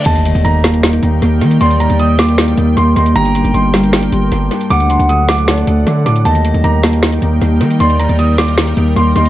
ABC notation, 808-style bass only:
X:1
M:4/4
L:1/16
Q:1/4=155
K:Eblyd
V:1 name="808-style bass" clef=bass
E,,3 E,, E,,6 E,,2 E,,2 E,2 | E,,3 E,,6- E,, E,,2 E,,2 E,,2 | G,,,3 G,,, G,,,6 G,,,2 G,,,2 z2 | D,,3 D,,6- D,, D,,2 D,2 A,,2 |
E,,3 E,, E,,6 E,,2 E,,2 E,2 | E,,3 E,,6- E,, E,,2 E,,2 E,,2 |]